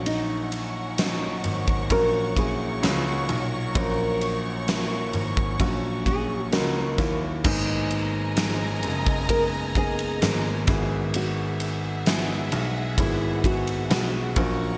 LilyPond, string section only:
\new Staff \with { instrumentName = "String section" } { \time 4/4 \key fis \mixolydian \tempo 4 = 65 << { <ais' cis'' cis'''>1~ | <ais' cis'' cis'''>1 | <dis'' ais''>2.~ <dis'' ais''>8 <gis' e''>8~ | <gis' e''>2.~ <gis' e''>8 <ais' cis'' cis'''>8 | } \\ { fis''1~ | fis''1 | gis''2.~ gis''8 fis''8~ | fis''1 | } >> }